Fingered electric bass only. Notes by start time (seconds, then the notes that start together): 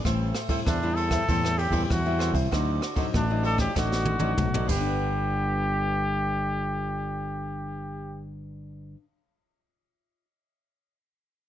0.05 A1
0.67 E2
1.29 E2
1.70 E2
1.91 E2
2.32 C2
2.53 D2
3.14 A1
3.76 A1
4.20 A1
4.38 B1
4.69 G1